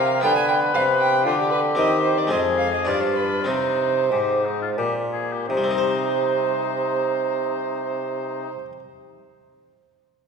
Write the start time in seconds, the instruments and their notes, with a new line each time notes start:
Already playing: harpsichord C3 D#4, bassoon C3, oboe A#4, violin F5
0.21 bassoon D3, harpsichord D3 B3 F4, oboe B4, violin G5
0.36 violin G#5
0.48 violin G5
0.74 bassoon C3, harpsichord C3, violin F5
0.99 violin G5
1.26 bassoon D3, harpsichord D3, violin F4, oboe G4
1.40 violin G4
1.51 violin B4
1.75 harpsichord D#3 C4 G4, bassoon D#3, violin D#5
2.03 violin C5
2.18 violin D5
2.27 harpsichord G#3 C4 F4, violin D#5
2.31 bassoon F2, harpsichord F2, oboe G#4
2.58 violin F5
2.74 violin D#5
2.85 bassoon G2, harpsichord G2 D4 F4, violin D5
2.89 oboe F4
3.02 violin C5
3.16 violin B4
3.44 harpsichord C3 C4 D#4, bassoon C3, violin C5
3.48 oboe D#4
4.11 bassoon G#2, harpsichord G#2, oboe G4
4.45 oboe D#4
4.62 oboe F4
4.78 bassoon A#2, harpsichord A#2, oboe G4
5.13 oboe G#4
5.32 oboe G4
5.48 bassoon C3, harpsichord C3, oboe D#4, violin C5
5.57 harpsichord G3
5.64 harpsichord C4
5.71 harpsichord D#4
5.78 harpsichord C5